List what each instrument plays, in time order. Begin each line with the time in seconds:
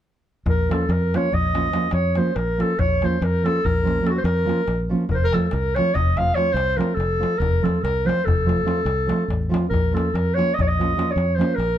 0.46 fingered electric bass A#1, clarinet A#4, darbuka dum
0.69 nylon-string guitar F3 A#3 C#4 F4, clarinet A4, darbuka tek
0.89 fingered electric bass F2, clarinet A#4, darbuka tek
1.14 nylon-string guitar F3 A#3 C#4 F4, clarinet C#5, darbuka tek
1.32 fingered electric bass A#1, clarinet D#5, darbuka dum
1.44 darbuka tek
1.54 nylon-string guitar F3 A#3 C#4 F4, darbuka tek
1.65 darbuka tek
1.72 nylon-string guitar F3 A#3 C#4 F4, darbuka tek
1.83 darbuka tek
1.91 fingered electric bass F2, clarinet C#5, darbuka tek
2.04 darbuka tek
2.15 nylon-string guitar F3 A#3 C#4 F4, clarinet C5, darbuka tek
2.26 darbuka tek
2.36 fingered electric bass A#1, clarinet A#4, darbuka tek
2.47 darbuka tek
2.58 nylon-string guitar F3 A#3 C#4 F4, clarinet A4, darbuka tek
2.70 darbuka tek
2.79 fingered electric bass A#1, clarinet C#5, darbuka dum
3.02 nylon-string guitar F3 A#3 C#4 F4, clarinet C5, darbuka tek
3.21 fingered electric bass F2, clarinet A#4, darbuka tek
3.44 nylon-string guitar F3 A#3 C#4 F4, clarinet A4, darbuka tek
3.65 fingered electric bass A#1, clarinet A#4, darbuka dum
3.76 darbuka tek
3.84 nylon-string guitar F3 A#3 C#4 F4, darbuka tek
3.97 darbuka tek
4.02 nylon-string guitar F3 A#3 C#4 F4
4.06 clarinet F#4 A4, darbuka tek
4.16 clarinet C5, darbuka tek
4.24 fingered electric bass F2, clarinet A#4, darbuka tek
4.38 darbuka tek
4.45 nylon-string guitar F3 A#3 C#4 F4
4.49 darbuka tek
4.59 darbuka tek
4.68 fingered electric bass A#1, darbuka tek
4.80 darbuka tek
4.89 nylon-string guitar F3 A#3 C#4 F4
5.01 darbuka tek
5.09 fingered electric bass F1, clarinet A#4, darbuka dum
5.14 clarinet C5
5.25 clarinet A#4
5.33 nylon-string guitar F3 A3 C4 F4, clarinet A4, darbuka tek
5.51 fingered electric bass C2, clarinet A#4, darbuka tek
5.75 nylon-string guitar F3 A3 C4 F4, clarinet C#5, darbuka tek
5.94 fingered electric bass F1, clarinet D#5, darbuka dum
6.07 darbuka tek
6.17 nylon-string guitar F3 A3 C4 F4, clarinet F5, darbuka tek
6.28 darbuka tek
6.35 nylon-string guitar F3 A3 C4 F4, clarinet C#5, darbuka tek
6.47 darbuka tek
6.53 fingered electric bass C2, clarinet C5, darbuka tek
6.69 darbuka tek
6.77 nylon-string guitar F3 A3 C4 F4, clarinet A#4
6.81 darbuka tek
6.90 darbuka tek
6.94 fingered electric bass F1, clarinet A4
7.00 darbuka tek
7.12 darbuka tek
7.20 nylon-string guitar F3 A3 C4 F4, darbuka tek
7.33 darbuka tek
7.38 fingered electric bass F1, clarinet A#4, darbuka dum
7.53 darbuka tek
7.62 nylon-string guitar F3 A3 C4 F4, clarinet A4, darbuka tek
7.76 darbuka tek
7.83 fingered electric bass C2, clarinet A#4, darbuka tek
7.97 darbuka tek
8.05 nylon-string guitar F3 A3 C4 F4, clarinet C5
8.09 darbuka tek
8.19 darbuka tek
8.25 fingered electric bass F1, clarinet A4, darbuka dum
8.39 darbuka tek
8.46 nylon-string guitar F3 A3 C4 F4, darbuka tek
8.64 nylon-string guitar F3 A3 C4 F4, darbuka tek
8.78 darbuka tek
8.85 fingered electric bass C2, darbuka tek
8.98 darbuka tek
9.07 nylon-string guitar F3 A3 C4 F4, darbuka tek
9.19 darbuka tek
9.28 fingered electric bass A1, darbuka tek, darbuka dum
9.43 darbuka tek
9.49 nylon-string guitar F3 A3 C4 F4
9.54 darbuka tek
9.64 darbuka tek
9.70 fingered electric bass A#1, clarinet A#4
9.74 darbuka dum
9.92 nylon-string guitar F3 A#3 C#4 F4, clarinet A4
9.97 darbuka tek
10.14 fingered electric bass F2, clarinet A#4, darbuka tek
10.34 nylon-string guitar F3 A#3 C#4 F4, clarinet C#5
10.39 darbuka tek
10.54 clarinet D#5
10.59 fingered electric bass A#1, clarinet C#5, darbuka dum
10.68 clarinet D#5, darbuka tek
10.78 nylon-string guitar F3 A#3 C#4 F4, darbuka tek
10.91 darbuka tek
10.97 nylon-string guitar F3 A#3 C#4 F4, darbuka tek
11.10 clarinet C#5, darbuka tek
11.16 fingered electric bass F2, darbuka tek
11.30 darbuka tek
11.35 nylon-string guitar F3 A#3 C#4, clarinet C5
11.40 nylon-string guitar F4, darbuka tek
11.51 clarinet A#4, darbuka tek
11.58 fingered electric bass A#1, darbuka tek
11.73 darbuka tek